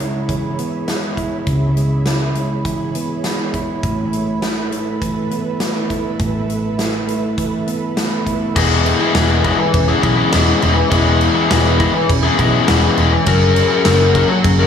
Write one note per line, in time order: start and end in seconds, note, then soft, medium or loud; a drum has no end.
0.00 1.43 C#2 medium
0.00 0.59 C#3 medium
0.00 0.86 G#3 medium
0.00 0.58 C#4 soft
0.00 1.17 E4 medium
0.00 3.80 G#4 medium
0.00 3.80 C#5 medium
0.00 3.80 E5 medium
0.00 8.52 B5 medium
0.00 closed hi-hat soft
0.29 2.65 E3 soft
0.29 kick medium
0.29 closed hi-hat medium
0.59 2.95 B3 medium
0.59 closed hi-hat soft
0.88 1.76 G#3 medium
0.88 snare medium
0.88 closed hi-hat medium
1.17 2.06 E4 medium
1.17 kick medium
1.17 closed hi-hat soft
1.47 3.79 C#2 medium
1.47 2.95 C#3 medium
1.47 kick medium
1.47 closed hi-hat medium
1.77 2.34 G#3 medium
1.77 closed hi-hat soft
2.06 3.54 E4 medium
2.06 snare medium
2.06 closed hi-hat medium
2.35 3.22 G#3 soft
2.35 closed hi-hat soft
2.65 5.01 E3 medium
2.65 kick medium
2.65 closed hi-hat medium
2.95 3.87 B3 medium
2.95 closed hi-hat medium
3.24 3.83 G#3 medium
3.24 snare medium
3.24 closed hi-hat medium
3.54 4.42 E4 medium
3.54 kick medium
3.54 closed hi-hat soft
3.83 6.16 A1 medium
3.83 5.32 A2 medium
3.83 8.52 A4 medium
3.83 8.52 B4 medium
3.83 8.52 E5 medium
3.83 kick medium
3.83 closed hi-hat medium
4.13 4.70 A3 medium
4.13 closed hi-hat medium
4.42 5.89 E4 medium
4.42 snare medium
4.42 closed hi-hat medium
4.71 5.59 A3 medium
4.71 closed hi-hat soft
5.01 6.49 E3 medium
5.01 kick medium
5.01 closed hi-hat medium
5.31 6.79 B3 medium
5.31 closed hi-hat soft
5.60 6.47 A3 medium
5.60 snare medium
5.60 closed hi-hat medium
5.90 6.76 E4 medium
5.90 kick medium
5.90 closed hi-hat soft
6.19 8.52 A1 medium
6.19 7.67 A2 medium
6.19 kick medium
6.19 closed hi-hat medium
6.48 7.06 A3 medium
6.48 closed hi-hat soft
6.78 8.25 E4 medium
6.78 snare medium
6.78 closed hi-hat medium
7.07 7.95 A3 medium
7.07 closed hi-hat soft
7.37 8.56 E3 medium
7.37 kick medium
7.37 closed hi-hat medium
7.67 8.56 B3 medium
7.67 closed hi-hat soft
7.96 8.56 A3 medium
7.96 snare medium
7.96 closed hi-hat medium
8.26 8.56 E4 medium
8.26 kick medium
8.26 closed hi-hat soft
8.56 8.92 E1 medium
8.56 10.03 E2 medium
8.56 9.14 E3 medium
8.56 9.15 G#3 loud
8.56 9.01 B3 loud
8.56 9.00 E4 loud
8.56 14.67 G#4 medium
8.56 8.99 G#4 loud
8.56 14.67 C#5 medium
8.56 13.23 E5 medium
8.56 13.23 B5 loud
8.56 kick loud
8.56 crash loud
8.56 crash medium
8.85 9.43 E4 medium
8.85 crash medium
9.00 9.15 B3 medium
9.00 9.16 E4 medium
9.00 9.16 G#4 medium
9.14 9.50 E1 medium
9.14 10.30 E3 loud
9.14 10.32 G#3 medium
9.14 9.43 G#3 loud
9.14 9.44 B3 loud
9.14 9.44 E4 medium
9.14 9.45 G#4 loud
9.14 snare loud
9.14 crash medium
9.43 9.59 G#3 medium
9.43 9.58 B3 medium
9.43 10.91 E4 medium
9.43 9.58 E4 medium
9.43 9.58 G#4 medium
9.43 kick medium
9.43 crash medium
9.58 muted overdriven electric guitar stroke medium
9.73 9.92 E1 loud
9.73 12.10 C#4 medium
9.73 kick loud
9.73 crash loud
9.88 10.01 B3 medium
9.88 10.02 E4 medium
9.88 10.03 G#4 medium
10.02 10.21 B1 medium
10.02 10.61 E3 medium
10.02 10.31 G#3 medium
10.02 10.18 B3 medium
10.02 10.17 E4 medium
10.02 10.16 G#4 medium
10.02 kick medium
10.02 crash medium
10.17 10.31 B3 medium
10.17 10.31 E4 medium
10.17 10.32 G#4 medium
10.31 10.51 E1 medium
10.31 10.89 E3 loud
10.31 10.61 G#3 loud
10.31 11.50 G#3 medium
10.31 10.61 B3 loud
10.31 10.61 E4 loud
10.31 10.63 G#4 loud
10.31 snare loud
10.31 crash loud
10.61 10.80 E1 medium
10.61 12.09 E3 medium
10.61 10.76 G#3 medium
10.61 10.75 B3 medium
10.61 10.75 E4 medium
10.61 10.75 G#4 medium
10.61 crash medium
10.76 muted overdriven electric guitar stroke medium
10.90 11.27 E1 loud
10.90 12.39 E2 medium
10.90 11.48 E3 medium
10.90 11.49 G#3 loud
10.90 11.35 B3 loud
10.90 11.34 E4 loud
10.90 11.33 G#4 loud
10.90 kick loud
10.90 crash medium
11.21 11.79 E4 medium
11.21 crash medium
11.34 11.49 B3 medium
11.34 11.49 E4 medium
11.34 11.51 G#4 medium
11.49 11.86 E1 medium
11.49 12.08 E3 loud
11.49 11.79 G#3 loud
11.49 12.68 G#3 medium
11.49 11.78 B3 loud
11.49 11.79 E4 loud
11.49 11.80 G#4 loud
11.49 snare loud
11.49 crash medium
11.79 11.94 G#3 medium
11.79 11.93 B3 medium
11.79 13.27 E4 medium
11.79 11.93 E4 medium
11.79 11.94 G#4 medium
11.79 kick medium
11.79 crash medium
11.94 muted overdriven electric guitar stroke medium
12.10 12.27 E1 loud
12.10 14.44 C#4 medium
12.10 kick loud
12.10 crash loud
12.23 12.37 B3 medium
12.23 12.38 E4 medium
12.23 12.40 G#4 medium
12.38 12.57 B1 medium
12.38 12.97 E3 medium
12.38 12.68 G#3 medium
12.38 12.54 B3 medium
12.38 12.53 E4 medium
12.38 12.52 G#4 medium
12.38 kick medium
12.38 crash medium
12.53 12.67 B3 medium
12.53 12.68 E4 medium
12.53 12.69 G#4 medium
12.67 12.86 E1 loud
12.67 13.25 E3 loud
12.67 12.97 G#3 loud
12.67 13.30 G#3 medium
12.67 12.97 B3 loud
12.67 12.97 E4 loud
12.67 12.99 G#4 loud
12.67 snare loud
12.67 crash medium
12.97 13.15 E1 medium
12.97 13.27 E3 medium
12.97 13.14 G#3 medium
12.97 13.12 B3 medium
12.97 13.12 E4 medium
12.97 13.12 G#4 medium
12.97 crash medium
13.13 muted overdriven electric guitar stroke medium
13.26 13.62 F#1 loud
13.26 13.85 F#3 loud
13.26 14.67 F#3 medium
13.26 13.72 C#4 loud
13.26 13.71 F#4 loud
13.26 13.70 A#4 loud
13.26 14.67 F#5 medium
13.26 14.67 A#5 loud
13.26 kick loud
13.26 crash loud
13.56 14.14 G#4 medium
13.56 crash medium
13.70 13.85 C#4 medium
13.70 13.86 F#4 medium
13.70 13.86 A#4 medium
13.85 14.21 F#1 loud
13.85 14.14 F#3 loud
13.85 14.67 A#3 medium
13.85 14.15 C#4 loud
13.85 14.16 F#4 loud
13.85 14.16 A#4 loud
13.85 snare loud
13.85 crash medium
14.14 14.59 F#3 medium
14.14 14.30 C#4 medium
14.14 14.29 F#4 medium
14.14 14.67 G#4 medium
14.14 14.29 A#4 medium
14.14 kick medium
14.14 crash medium
14.30 muted overdriven electric guitar stroke medium
14.44 14.62 F#1 loud
14.44 14.67 C#4 medium
14.44 kick loud
14.44 crash medium
14.59 14.67 C#4 medium
14.59 14.67 F#4 medium
14.59 14.67 A#4 medium